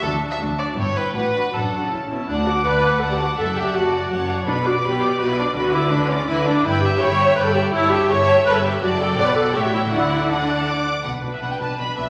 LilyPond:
<<
  \new Staff \with { instrumentName = "Violin section" } { \time 3/4 \key d \major \tempo 4 = 164 a''8 a''8 a''8 a''8 g''8 g''8 | fis''8 fis''8 fis''8 fis''8 a''8 a''8 | fis''4 d''4 fis''4 | e''4 d''4 cis''4 |
b'2 d''4 | b'2 b'4~ | b'4 e''4 d''4 | cis''4 e''2 |
d''2 e''4 | fis''4 fis''8 a''8 d'''4 | \key b \minor fis''8. e''16 fis''16 g''16 a''8 b''8 e''8 | }
  \new Staff \with { instrumentName = "Violin section" } { \time 3/4 \key d \major << { a'8. e''8. d''8 cis''8 b'8 | b'4 a'4 r4 | a''8 d'''8 a''8 d'''8 a''8 d'''8 | a''8 fis''8 a''8 fis''8 a''8 fis''8 |
b''8 d'''8 b''8 d'''8 b''8 d'''8 | b''8 d'''8 b''8 d'''8 b''8 d'''8 | b''8 g''8 b''8 g''8 b''8 g''8 | a''8 g''8 a''8 g''8 a''8 g''8 |
a''8 g''8 fis''4 g''4 | fis''4 fis''4. r8 | \key b \minor b'2. | } \\ { r2. | r2. | d''8 fis''8 d''8 fis''8 d''8 fis''8 | fis''8 d''8 fis''8 d''8 fis''8 d''8 |
b'8 d''8 b'8 d''8 b'8 d''8 | b'8 d''8 b'8 d''8 b'8 d''8 | g''8 e''8 g''8 e''8 g''8 e''8 | cis''8 e''8 cis''8 e''8 cis''8 e''8 |
d''4 d''4 cis''4 | d''4 d''4. r8 | r2. | } >> }
  \new Staff \with { instrumentName = "Viola section" } { \time 3/4 \key d \major <d' fis'>8 <d' fis'>8 <d' fis'>8 <d' fis'>8 <b e'>8 <b e'>8 | <d' fis'>8 <d' fis'>8 <d' fis'>8 <d' fis'>8 <cis' e'>8 <cis' e'>8 | d'8 fis'8 b'4 a'16 g'16 fis'8 | a'8 g'8 fis'4. r8 |
d'8 fis'8 g'4 fis'16 e'16 d'8 | fis'8 e'8 d'8 cis'8 e'8 d'8 | e'8 g'8 cis''4 b'16 a'16 g'8 | e'8 g'8 cis''4 b'16 a'16 g'8 |
fis'8 a'8 d''16 b'16 a'8 g'16 fis'16 e'8 | e'4 d'4. r8 | \key b \minor <d' b'>8 <d' b'>8 <d' b'>8 <d' b'>8 <d' b'>8 <d' b'>8 | }
  \new Staff \with { instrumentName = "Cello section" } { \clef bass \time 3/4 \key d \major d,4 d,4 g,4 | a,4 fis,8. cis8. b,8 | d,4 d,4 d,4 | fis,4 fis,4 fis,4 |
b,4 b,4 b,4 | d4 d4 d4 | g,4 g,4 g,4 | g,4 g,4 g,4 |
fis,4 b,4 a,4 | d2~ d8 r8 | \key b \minor b,8 b,8 b,8 b,8 b,8 b,8 | }
  \new Staff \with { instrumentName = "Double bass section" } { \clef bass \time 3/4 \key d \major d,4 d,4 g,,4 | a,,4 a,,4 a,,4 | d,4 d,4 d,4 | fis,,4 fis,,4 fis,,4 |
b,,4 b,,4 b,,4 | d,4 d,4 d,4 | g,,4 g,,4 g,,4 | g,,4 g,,4 g,,4 |
fis,,4 b,,4 a,,4 | d,2~ d,8 r8 | \key b \minor b,,8 b,,8 b,,8 b,,8 b,,8 b,,8 | }
>>